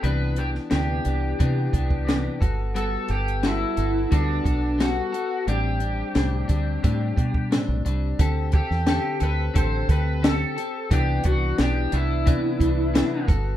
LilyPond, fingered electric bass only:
\new Staff \with { instrumentName = "Fingered electric bass" } { \clef bass \time 4/4 \key c \lydian \tempo 4 = 88 c,4 d,8 c,8 c8 c,4 g,,8~ | g,,8 g,,4 g,,8 d,8 b,,4 r8 | a,,4 c,8 d,8 a,8 b,8. b,,16 c,8 | d,8. e,8 r16 d,8 a,,8 d,4 r8 |
c,8 c,8 b,,8 c,8. r16 c,8. r16 g,,8 | }